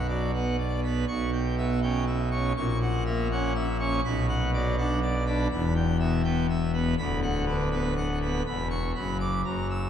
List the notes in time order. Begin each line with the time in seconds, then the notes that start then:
Already playing: B1 B2
0.08 F#3 D5
0.34 B3 F#5
0.58 D5
0.84 B3 B5
1.08 B1 B2 C#6
1.33 G5
1.58 B3 E5
1.83 C#4 G5
2.07 E5
2.31 C#4 C#6
2.57 A#1 A#2 C#6
2.82 F#5
3.06 A#3 E5
3.31 C#4 F#5
3.55 E5
3.80 C#4 C#6
4.04 B1 B2 B5
4.29 F#5
4.54 F#3 D5
4.78 D4 F#5
5.02 D5
5.26 D4 B5
5.52 E1 E2 B5
5.76 G5
6.00 B2 E5
6.24 B3 G5
6.49 E5
6.73 B3 B5
6.98 D1 D2 B5
7.22 F#5
7.47 D3 B4
7.71 B3 B5
7.97 F#5
8.21 B3 B5
8.46 E1 E2 B5
8.70 C#6
8.95 F#1 F#2 B5
9.20 D6
9.45 F#1 F#2 A#5
9.70 E6